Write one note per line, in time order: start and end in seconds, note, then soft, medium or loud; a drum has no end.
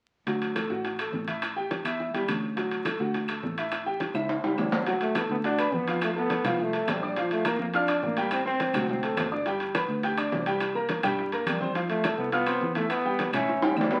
0.27 0.67 D2 medium
0.27 0.51 F#3 medium
0.27 0.51 F#4 medium
0.27 high bongo medium
0.27 high conga soft
0.27 high timbale medium
0.42 high bongo soft
0.42 high conga soft
0.42 high timbale medium
0.55 0.67 A3 medium
0.55 0.68 A4 medium
0.55 high bongo medium
0.55 high conga medium
0.55 high timbale medium
0.55 claves medium
0.70 1.10 A1 medium
0.70 0.94 F#4 medium
0.70 0.94 F#5 medium
0.70 high bongo soft
0.70 high conga soft
0.84 high bongo medium
0.84 high conga soft
0.84 high timbale medium
0.99 1.23 A3 medium
0.99 1.23 A4 medium
0.99 high conga soft
0.99 high timbale medium
0.99 claves medium
1.13 1.79 A1 medium
1.13 high bongo soft
1.13 low bongo medium
1.13 high conga medium
1.28 1.51 E4 medium
1.28 1.51 E5 medium
1.28 high bongo soft
1.28 high conga medium
1.28 high timbale medium
1.42 high bongo medium
1.42 high conga soft
1.42 high timbale medium
1.42 claves medium
1.56 1.80 G4 medium
1.56 1.80 G5 medium
1.56 high bongo soft
1.56 high conga soft
1.71 high bongo medium
1.71 high conga medium
1.71 high timbale medium
1.85 2.12 E2 medium
1.85 2.09 E4 medium
1.85 2.09 E5 medium
1.85 high bongo soft
1.85 high conga soft
1.85 high timbale medium
1.85 claves medium
2.00 high bongo medium
2.00 high conga soft
2.14 2.27 E2 medium
2.14 2.26 G3 medium
2.14 2.26 G4 medium
2.14 high conga soft
2.14 high timbale medium
2.28 2.94 D2 medium
2.28 2.51 C#4 medium
2.28 2.52 C#5 medium
2.28 high bongo soft
2.28 low bongo medium
2.28 high conga medium
2.28 high timbale medium
2.28 claves medium
2.43 high bongo soft
2.56 2.80 F#3 medium
2.56 2.80 F#4 medium
2.56 high bongo medium
2.56 high timbale medium
2.71 high bongo soft
2.71 high conga soft
2.71 high timbale medium
2.85 2.97 A3 medium
2.85 2.98 A4 medium
2.85 high bongo medium
2.85 high conga medium
2.85 high timbale medium
2.85 claves medium
2.99 3.40 D2 medium
2.99 3.24 F#4 medium
2.99 3.24 F#5 medium
2.99 high bongo soft
2.99 high conga soft
3.14 high bongo medium
3.14 high conga soft
3.14 high timbale medium
3.28 3.52 A3 medium
3.28 3.53 A4 medium
3.28 high conga soft
3.28 high timbale medium
3.28 claves medium
3.43 4.09 A1 medium
3.43 high bongo soft
3.43 low bongo medium
3.43 high conga medium
3.58 3.81 E4 medium
3.58 3.82 E5 medium
3.58 high bongo soft
3.58 high timbale medium
3.72 high bongo medium
3.72 high conga soft
3.72 high timbale medium
3.72 claves medium
3.86 4.10 G4 medium
3.86 4.10 G5 medium
3.86 high bongo soft
3.86 high conga soft
4.00 high bongo medium
4.00 high conga medium
4.00 high timbale medium
4.14 4.41 C#2 medium
4.14 4.38 E4 medium
4.14 4.38 E5 medium
4.14 high conga soft
4.14 high timbale medium
4.14 claves medium
4.29 high bongo medium
4.29 high conga soft
4.29 high timbale medium
4.43 4.57 C#2 medium
4.43 4.55 G3 medium
4.43 4.56 G4 medium
4.43 high conga soft
4.43 high timbale medium
4.58 5.24 D2 medium
4.58 4.85 G3 medium
4.58 4.82 C#4 medium
4.58 4.82 C#5 medium
4.58 high bongo soft
4.58 low bongo medium
4.58 high conga medium
4.58 low timbale medium
4.58 claves medium
4.72 high bongo soft
4.72 high conga medium
4.72 low timbale medium
4.86 5.10 F#3 medium
4.86 4.94 F#3 medium
4.86 5.10 F#4 medium
4.86 5.10 F#5 medium
4.86 high bongo medium
4.86 high conga soft
4.86 high timbale medium
5.01 5.15 A3 medium
5.01 high bongo soft
5.01 high conga soft
5.01 high timbale medium
5.15 5.39 A3 medium
5.15 5.23 B3 medium
5.15 5.39 A4 medium
5.15 5.39 A5 medium
5.15 high bongo medium
5.15 high conga medium
5.15 high timbale loud
5.15 claves medium
5.29 5.69 D2 medium
5.29 5.37 B3 medium
5.29 high bongo soft
5.29 high conga soft
5.44 5.77 D4 loud
5.44 5.56 F#4 medium
5.44 5.56 F#5 medium
5.44 5.56 F#6 medium
5.44 high bongo medium
5.44 high conga soft
5.44 high timbale medium
5.58 5.82 B3 medium
5.58 5.82 B4 medium
5.58 5.82 B5 medium
5.58 high conga soft
5.58 high timbale medium
5.58 claves medium
5.72 6.39 F2 medium
5.72 6.03 B3 medium
5.72 high bongo soft
5.72 low bongo medium
5.72 high conga medium
5.87 6.11 F3 medium
5.87 6.11 F4 medium
5.87 6.11 F5 medium
5.87 high bongo soft
5.87 high timbale medium
6.01 6.10 A3 medium
6.01 high bongo medium
6.01 high conga soft
6.01 high timbale medium
6.01 claves medium
6.16 6.39 A3 medium
6.16 6.63 B3 loud
6.16 6.39 A4 medium
6.16 6.40 A5 medium
6.16 high bongo soft
6.16 high conga soft
6.30 high bongo medium
6.30 high conga loud
6.30 high timbale medium
6.44 6.84 C2 medium
6.44 6.68 F3 medium
6.44 6.68 F4 medium
6.44 6.68 F5 medium
6.44 high bongo soft
6.44 high conga soft
6.44 low conga medium
6.44 high timbale medium
6.44 claves medium
6.59 6.91 A3 medium
6.59 high bongo medium
6.59 high conga soft
6.73 6.97 A3 medium
6.73 6.97 A4 medium
6.73 6.97 A5 medium
6.73 high conga soft
6.73 high timbale medium
6.87 7.54 A#1 medium
6.87 7.20 G3 medium
6.87 high bongo soft
6.87 low bongo medium
6.87 high conga medium
6.87 high timbale medium
6.87 low timbale medium
6.87 claves medium
7.02 7.14 D4 medium
7.02 7.14 D5 medium
7.02 7.14 D6 medium
7.02 high bongo soft
7.16 7.40 F3 medium
7.16 7.31 F3 medium
7.16 7.41 F4 medium
7.16 7.41 F5 medium
7.16 high bongo medium
7.16 high conga soft
7.16 high timbale medium
7.31 7.48 A3 medium
7.31 high bongo soft
7.31 high conga soft
7.31 high timbale medium
7.45 7.69 A#3 medium
7.45 7.60 A#3 medium
7.45 7.69 A#4 medium
7.45 7.69 A#5 medium
7.45 high bongo medium
7.45 high conga medium
7.45 high timbale loud
7.45 claves medium
7.59 7.99 F2 medium
7.59 7.67 A#3 medium
7.59 high bongo soft
7.59 high conga soft
7.74 8.06 D4 medium
7.74 7.86 F4 medium
7.74 7.86 F5 medium
7.74 7.86 F6 medium
7.74 high bongo medium
7.74 high conga soft
7.74 high timbale medium
7.88 8.12 D4 medium
7.88 8.12 D5 medium
7.88 8.12 D6 medium
7.88 high conga soft
7.88 high timbale medium
7.88 claves medium
8.02 8.69 A1 medium
8.02 8.32 A#3 medium
8.02 high bongo soft
8.02 low bongo medium
8.02 high conga medium
8.17 8.41 G3 medium
8.17 8.41 G4 medium
8.17 8.41 G5 medium
8.17 high bongo soft
8.17 high timbale medium
8.31 8.45 C4 medium
8.31 high bongo medium
8.31 high conga soft
8.31 high timbale medium
8.31 claves medium
8.45 8.69 C4 medium
8.45 8.86 C4 loud
8.45 8.69 C5 medium
8.45 8.69 C6 medium
8.45 high bongo soft
8.45 high conga soft
8.60 high bongo medium
8.60 high conga medium
8.60 high timbale medium
8.73 9.14 D2 medium
8.73 8.98 F#3 medium
8.73 8.98 F#4 medium
8.73 8.98 F#5 medium
8.73 high bongo soft
8.73 high conga soft
8.73 low conga medium
8.73 high timbale medium
8.73 claves medium
8.89 9.30 C4 medium
8.89 high bongo medium
8.89 high conga soft
8.89 low conga medium
9.02 9.27 A3 medium
9.02 9.27 A4 medium
9.02 9.27 A5 medium
9.02 high conga soft
9.02 high timbale medium
9.16 9.84 G1 medium
9.16 high bongo soft
9.16 low bongo medium
9.16 high conga medium
9.16 high timbale medium
9.16 low timbale medium
9.16 claves medium
9.31 9.43 D4 medium
9.31 9.43 D5 medium
9.31 9.44 D6 medium
9.31 high bongo soft
9.46 9.70 G3 medium
9.46 9.70 G4 medium
9.46 9.70 G5 medium
9.46 high bongo medium
9.46 high conga soft
9.46 high timbale medium
9.60 high bongo soft
9.60 high conga soft
9.60 high timbale medium
9.75 9.99 B3 medium
9.75 9.99 B4 medium
9.75 9.99 B5 medium
9.75 high bongo medium
9.75 high conga loud
9.75 high timbale medium
9.75 claves medium
9.88 10.29 D2 medium
9.88 high bongo soft
9.88 high conga soft
10.03 10.15 G4 medium
10.03 10.15 G5 medium
10.03 10.16 G6 medium
10.03 high bongo medium
10.03 high conga soft
10.03 high timbale medium
10.18 10.41 D4 medium
10.18 10.41 D5 medium
10.18 10.42 D6 medium
10.18 high conga soft
10.18 high timbale medium
10.18 claves medium
10.32 10.98 C2 medium
10.32 high bongo soft
10.32 low bongo medium
10.32 high conga medium
10.32 low timbale medium
10.46 10.70 G3 medium
10.46 10.70 G4 medium
10.46 10.70 G5 medium
10.46 high bongo soft
10.46 high timbale medium
10.60 high bongo medium
10.60 high timbale medium
10.60 claves medium
10.75 10.98 A#3 medium
10.75 10.99 A#4 medium
10.75 10.99 A#5 medium
10.75 high bongo soft
10.75 high conga soft
10.89 high bongo medium
10.89 high conga medium
10.89 high timbale medium
11.03 11.44 G2 medium
11.03 11.27 G3 medium
11.03 11.27 G4 medium
11.03 11.27 G5 medium
11.03 high bongo soft
11.03 high conga soft
11.03 low conga medium
11.03 high timbale medium
11.03 claves medium
11.18 high bongo medium
11.18 high conga soft
11.32 11.56 A#3 medium
11.32 11.56 A#4 medium
11.32 11.56 A#5 medium
11.32 high conga soft
11.32 high timbale medium
11.46 12.13 F2 medium
11.46 11.74 G3 medium
11.46 high bongo soft
11.46 low bongo medium
11.46 high conga medium
11.46 high timbale loud
11.46 claves medium
11.60 11.73 C4 medium
11.60 11.73 C5 medium
11.60 11.73 C6 medium
11.60 high bongo soft
11.60 high conga medium
11.75 11.99 F3 medium
11.75 11.82 F3 medium
11.75 11.99 F4 medium
11.75 11.99 F5 medium
11.75 high bongo medium
11.75 high conga soft
11.75 high timbale medium
11.89 12.16 A3 medium
11.89 high bongo soft
11.89 high conga soft
11.89 high timbale medium
12.04 12.28 A3 medium
12.04 12.28 A4 medium
12.04 12.28 A5 medium
12.04 high bongo medium
12.04 high conga medium
12.04 high timbale medium
12.04 claves medium
12.17 12.58 C2 medium
12.17 12.32 B3 medium
12.17 high bongo soft
12.17 high conga soft
12.32 12.73 B3 loud
12.32 12.44 F4 medium
12.32 12.45 F5 medium
12.32 12.45 F6 medium
12.32 high bongo medium
12.32 high conga soft
12.32 high timbale medium
12.46 12.71 C4 medium
12.46 12.71 C5 medium
12.46 12.71 C6 medium
12.46 high conga soft
12.46 high timbale medium
12.46 claves medium
12.61 13.28 E2 medium
12.61 high bongo soft
12.61 low bongo medium
12.61 high conga medium
12.75 12.99 E3 medium
12.75 12.89 A3 medium
12.75 12.99 E4 medium
12.75 13.00 E5 medium
12.75 high bongo soft
12.75 high conga medium
12.75 high timbale medium
12.89 13.30 B3 loud
12.89 high bongo medium
12.89 high timbale medium
12.89 claves medium
13.05 13.28 G3 medium
13.05 13.29 G4 medium
13.05 13.29 G5 medium
13.05 high bongo soft
13.05 high conga soft
13.19 high bongo medium
13.19 high conga medium
13.19 high timbale medium
13.32 13.73 A1 medium
13.32 13.57 E3 medium
13.32 13.74 C#4 loud
13.32 13.57 E4 medium
13.32 13.58 E5 medium
13.32 high bongo soft
13.32 high conga soft
13.32 low conga medium
13.32 high timbale medium
13.32 claves medium
13.48 high bongo medium
13.48 high conga soft
13.62 13.86 G3 medium
13.62 13.86 G4 medium
13.62 13.86 G5 medium
13.62 high bongo medium
13.62 high conga soft
13.62 high timbale medium
13.76 14.00 D2 medium
13.76 14.00 G3 medium
13.76 low bongo medium
13.76 high conga medium
13.76 claves medium
13.81 low timbale medium
13.91 14.00 B3 medium
13.91 14.00 B4 medium
13.91 14.00 B5 medium
13.91 low bongo medium
13.91 low timbale medium